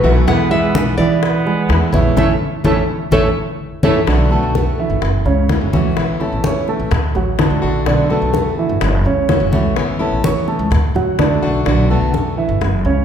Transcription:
Already playing: trumpet F#3, nylon-string guitar B4
0.03 upright bass B1, steel-string acoustic guitar D#3 A3 B3 F#4, grand piano E3 E4 E5, high bongo, high conga
0.27 upright bass E2, steel-string acoustic guitar B2 E3 G#3 B3 E4, grand piano E3 E4 E5, trumpet B3, nylon-string guitar F#5, high bongo, high conga
0.50 steel-string acoustic guitar E3 G#3 B3 E4, grand piano G#3 G#4 B4, trumpet B3, nylon-string guitar E5, high conga
0.74 upright bass B1, steel-string acoustic guitar E3 G#3 B3 E4, high bongo, high conga
0.97 upright bass E3, grand piano E3 E4 E5, trumpet B3, nylon-string guitar D5, high conga
1.22 muted steel-string acoustic guitar stroke, high bongo, high conga
1.46 grand piano G#3 G#4 B4, high conga
1.69 upright bass E2, steel-string acoustic guitar E3 G#3 B3 E4, high bongo, low bongo, high conga
1.92 upright bass A#1, grand piano E3 E4 E5, steel-string acoustic guitar E3 G#3 B3 E4, trumpet A3, nylon-string guitar C#5, high conga
2.16 upright bass A1, steel-string acoustic guitar E3 A3 C#4, trumpet A3, grand piano C#4 E4 A4, nylon-string guitar A4 C#5 E5, low bongo, high conga
2.64 upright bass A1, steel-string acoustic guitar E3 A3 C#4, trumpet A3, grand piano C#4 E4 A4, nylon-string guitar A4 C#5 E5, low bongo, high conga
3.11 upright bass A1, steel-string acoustic guitar E3 A3 C#4, trumpet A3, grand piano C#4 E4 A4, nylon-string guitar A4 C#5 E5, low bongo, high conga
3.83 upright bass A1, steel-string acoustic guitar E3 A3 C#4, trumpet A3, grand piano C#4 E4 A4, nylon-string guitar A4 C#5 E5, low bongo, high conga
4.07 upright bass B1, steel-string acoustic guitar B2 D3 A3 B3 F#4, grand piano D3 D4 D5, high bongo, high conga
4.31 steel-string acoustic guitar D3 A3 B3 F#4, grand piano A3 A4 A5, high conga
4.43 upright bass B1
4.54 steel-string acoustic guitar D3 A3 B3 F#4, high bongo, high conga
4.79 grand piano E3 E4 E5
4.90 upright bass G#1
5.02 upright bass F#1, muted steel-string acoustic guitar stroke, high bongo, high conga
5.25 upright bass C#2, grand piano C#3 C#4 C#5, high conga
5.49 steel-string acoustic guitar E3 A3 C#4 F#4, high bongo, low bongo, high conga
5.61 upright bass F#1
5.73 upright bass C#2, grand piano E3 E4 E5, steel-string acoustic guitar E3 A3 C#4 F#4, high conga
5.96 upright bass A1, steel-string acoustic guitar E3 B3 C#4 E4, high bongo, high conga
6.20 grand piano A3 A4 A5, steel-string acoustic guitar B3 C#4 E4, high bongo, high conga
6.32 upright bass A1
6.44 steel-string acoustic guitar E3 B3 C#4 E4, grand piano C#4 C#5 C#6, high bongo, high conga
6.68 grand piano A3 A4 A5, high conga
6.80 upright bass A1
6.91 upright bass D2, muted steel-string acoustic guitar stroke, high bongo, high conga, low conga
7.15 upright bass A1, grand piano F#3 F#4 F#5, high bongo, high conga
7.38 steel-string acoustic guitar D3 A3 D4 F#4, grand piano D3 D4 D5, high bongo, low bongo, high conga
7.50 upright bass D2
7.62 upright bass A1, steel-string acoustic guitar A3 D4 F#4, high bongo
7.85 upright bass B1, steel-string acoustic guitar B2 D3 A3 B3 F#4, grand piano D3 D4 D5, high bongo, high conga
8.10 steel-string acoustic guitar D3 A3 B3 F#4, grand piano A3 A4 A5, high conga
8.22 upright bass B1
8.33 steel-string acoustic guitar D3 A3 B3 F#4, high bongo, high conga
8.58 grand piano E3 E4 E5
8.69 upright bass G1
8.81 upright bass F#1, muted steel-string acoustic guitar stroke, high bongo, high conga
9.05 upright bass C#2, grand piano C#3 C#4 C#5, high conga
9.28 steel-string acoustic guitar E3 A3 C#4 F#4, high bongo, low bongo, high conga
9.40 upright bass F#1
9.52 upright bass C#2, grand piano E3 E4 E5, steel-string acoustic guitar E3 A3 C#4 F#4, high conga
9.76 upright bass A1, steel-string acoustic guitar E3 B3 C#4 E4, high bongo, high conga
9.99 grand piano A3 A4 A5, steel-string acoustic guitar B3 C#4 E4, high bongo, high conga
10.11 upright bass A1
10.23 steel-string acoustic guitar E3 B3 C#4 E4, grand piano C#4 C#5 C#6, high bongo, high conga
10.48 grand piano A3 A4 A5, high conga
10.59 upright bass C#2
10.71 upright bass D2, muted steel-string acoustic guitar stroke, high bongo, high conga, low conga
10.95 upright bass D2, grand piano F#3 F#4 F#5, high bongo, high conga, low conga
11.18 upright bass C#2, steel-string acoustic guitar D3 A3 D4 F#4, grand piano D3 D4 D5, high bongo, low bongo, high conga
11.42 upright bass B1, steel-string acoustic guitar A3 D4 F#4, high bongo
11.66 upright bass B1, steel-string acoustic guitar B2 D3 A3 B3 F#4, grand piano D3 D4 D5, high bongo, high conga
11.90 steel-string acoustic guitar D3 A3 B3 F#4, grand piano A3 A4 A5, high conga
12.01 upright bass B1
12.14 steel-string acoustic guitar D3 A3 B3 F#4, high bongo, high conga
12.37 grand piano E3 E4 E5
12.49 upright bass G1
12.61 upright bass F#1, muted steel-string acoustic guitar stroke, high bongo, high conga
12.85 upright bass C#2, grand piano C#3 C#4 C#5, high conga

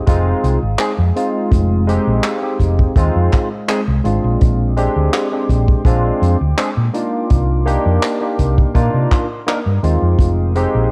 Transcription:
Already playing: ambient pad G#3 F5 G5 D#6
0.07 fingered electric bass F1, tine electric piano G#3 C4 D#4 F4, kick, closed hi-hat
0.44 fingered electric bass C2, closed hi-hat
0.62 fingered electric bass G#1
0.79 tine electric piano G#3 C4 D#4 G#4, clap, closed hi-hat
0.98 fingered electric bass F2
1.16 tine electric piano G#3 C4 D#4 F4, closed hi-hat
1.52 fingered electric bass F1, kick, closed hi-hat
1.87 tine electric piano G#3 C4 D#4 G4, closed hi-hat
2.07 fingered electric bass A#1
2.24 clap, closed hi-hat
2.42 tine electric piano G#3 C4 D#4 G4
2.60 fingered electric bass F1, kick, closed hi-hat
2.79 kick
2.96 fingered electric bass D#2, tine electric piano G#3 C4 D#4 F4, kick, closed hi-hat
3.16 fingered electric bass F2
3.32 kick, clap, closed hi-hat
3.68 tine electric piano G#3 C4 D#4 G#4, clap, closed hi-hat
3.88 fingered electric bass C2
4.04 fingered electric bass G#1, tine electric piano G#3 C4 D4 F4, closed hi-hat
4.24 fingered electric bass A#1
4.41 fingered electric bass A#1, ambient pad G5 C6 D6, kick, closed hi-hat
4.77 tine electric piano G#3 C4 D4 G4, closed hi-hat
4.96 fingered electric bass D2
5.14 clap, closed hi-hat
5.32 tine electric piano G#3 C4 D4 G4
5.49 fingered electric bass A#1, kick, closed hi-hat
5.68 kick
5.85 fingered electric bass A#1, tine electric piano G#3 C4 D4 F4, kick, closed hi-hat
6.22 fingered electric bass F2, closed hi-hat
6.41 fingered electric bass D2
6.57 tine electric piano G#3 C4 D4 G#4, clap, closed hi-hat
6.77 fingered electric bass A#2
6.94 tine electric piano A#3 D4 D#4 F4, ambient pad A#4 C6, closed hi-hat
7.30 fingered electric bass C2, kick, closed hi-hat
7.66 tine electric piano A#3 D4 D#4 G4, closed hi-hat
7.86 fingered electric bass F2
8.03 clap, closed hi-hat
8.21 tine electric piano A#3 D4 D#4 G4
8.39 fingered electric bass C2, kick, closed hi-hat
8.58 kick
8.74 fingered electric bass A#2, tine electric piano A#3 D4 D#4 F4, kick, closed hi-hat
8.94 fingered electric bass C3
9.11 kick, clap, closed hi-hat
9.47 tine electric piano A#3 D4 D#4 A#4, clap, closed hi-hat
9.66 fingered electric bass G2
9.83 fingered electric bass D#2, tine electric piano G#3 C4 D#4 F4, closed hi-hat
10.02 fingered electric bass F2
10.19 fingered electric bass F1, ambient pad G#3 F5 G5 D#6, kick, closed hi-hat
10.55 tine electric piano G#3 C4 D#4 G4, closed hi-hat
10.75 fingered electric bass A#1

